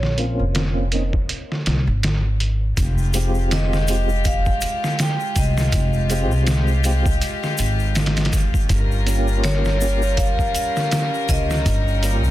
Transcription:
Already playing: A#1 C#5
0.03 snare
0.18 A#3 C4 C#4 F4, closed hi-hat
0.39 F1
0.55 snare, closed hi-hat
0.92 A#3 C4 C#4 D#4, closed hi-hat
1.13 kick
1.29 closed hi-hat
1.52 snare
1.66 C2, snare, closed hi-hat
1.87 G#1
2.03 snare, closed hi-hat
2.40 closed hi-hat
2.77 F1 G#3 F4 G4, kick, closed hi-hat, shaker
2.98 shaker
3.14 G#3 C4 F4 G4, closed hi-hat, shaker
3.34 shaker
3.51 D#5, snare, closed hi-hat, shaker
3.73 snare, shaker
3.88 G#3 C4 F4 G4, closed hi-hat, shaker
4.09 shaker
4.24 F5, kick, closed hi-hat, shaker
4.46 kick, shaker
4.61 closed hi-hat, shaker
4.84 snare, shaker
4.99 G5, snare, closed hi-hat, shaker
5.20 shaker
5.36 C2 D#5, kick, closed hi-hat, shaker
5.57 snare, shaker
5.72 F1 G4, kick, closed hi-hat, shaker
5.93 shaker
6.10 G#3 C4 F4 G4, closed hi-hat, shaker
6.32 C2, shaker
6.47 snare, closed hi-hat, shaker
6.67 shaker
6.84 G#3 C4 F4 G4, closed hi-hat, shaker
7.06 kick, shaker
7.22 closed hi-hat, shaker
7.43 snare, shaker
7.58 G#1, closed hi-hat, shaker
7.79 shaker
7.95 snare, closed hi-hat, shaker
8.06 snare, closed hi-hat
8.16 snare, closed hi-hat, shaker
8.25 snare, closed hi-hat
8.33 kick, closed hi-hat, shaker
8.54 kick, shaker
8.69 G1 G3 C#4 F4 A#4, kick, closed hi-hat, shaker
8.91 shaker
9.06 A#3 C#4 F4 G4, closed hi-hat, shaker
9.28 shaker
9.44 C#5, snare, closed hi-hat, shaker
9.65 snare, shaker
9.81 A#3 C#4 F4 G4, shaker
10.02 shaker
10.17 F5, kick, closed hi-hat, shaker
10.39 kick, shaker
10.55 F5, closed hi-hat, shaker
10.76 snare, shaker
10.91 snare, closed hi-hat, shaker
11.14 shaker
11.29 C#2 D#5, kick, closed hi-hat, shaker
11.50 snare, shaker
11.66 G1 D#4, kick, closed hi-hat, shaker
11.88 shaker
12.03 A#3 C#4 F4 G4, closed hi-hat, shaker
12.24 C#2, shaker

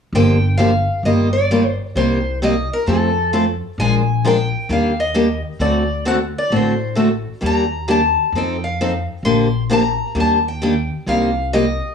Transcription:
0.13 G1 D3 F3 A#3 D4 G4 G5
0.58 D3 F3 A#3 D4 G4 F5
1.03 G1 D#3 G3 A#3 F4 G4 D#5
1.33 D5
1.51 D#3 G3 A#3 F4 G4
1.95 C2 C3 G3 A#3 D#4 G4 C5
2.42 C3 G3 A#3 D#4 G4 D#5
2.73 A#4
2.86 F2 F3 A3 C4 F4 A4
3.33 F3 A3 C4 F4 A4
3.78 A#1 F3 G#3 D4 F4 A#4 G#5
4.25 F3 G#3 D4 F4 A#4 G5
4.69 D#2 D#3 G3 A#3 D4 G4 F5
5.00 D#5
5.14 D#3 G3 A#3 D4 G4
5.60 D2 D3 A3 C4 F#4 A4 D5
6.05 D3 A3 C4 F#4 A4 F#5
6.38 D5
6.50 A1 D3 A3 C4 F#4 A4
6.56 C5
6.95 D3 A3 C4 F#4 A4
7.41 D#2 D#3 G3 A#3 D4 G4
7.46 A#5
7.88 D#3 G3 A#3 D4 G4 A5
8.33 F2 F3 C4 D#4 A4
8.38 G5
8.64 F5
8.81 F3 C4 D#4 A4
9.23 A#1 D3 F3 A#3 D4 G4 C6
9.69 D3 F3 A#3 D4 G4 A#5
10.15 D#2 D#3 G3 A#3 D4 G4
10.20 A5
10.48 G5
10.62 D#3 G3 A#3 D4 G4
11.06 C2 C3 G3 A#3 D#4 G4 F5
11.53 C3 G3 A#3 D#4 G4 D#5

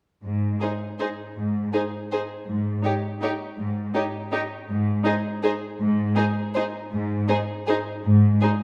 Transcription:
0.24 G#2
0.61 D#4 G#4 C5
1.00 D#4 G#4 C5
1.36 G#2
1.73 D#4 G#4 C5
2.12 D#4 G#4 C5
2.48 G#2
2.84 D#4 G4 C#5
3.22 D#4 G4 C#5
3.59 G#2
3.95 D#4 G4 C#5
4.33 D#4 G4 C#5
4.69 G#2
5.05 D#4 G#4 C5
5.43 D#4 G#4 C5
5.80 G#2
6.16 D#4 G#4 C5
6.55 D#4 G#4 C5
6.92 G#2
7.29 D#4 G#4 C5
7.67 D#4 G#4 C5
8.05 G#2
8.41 D#4 G#4 C5

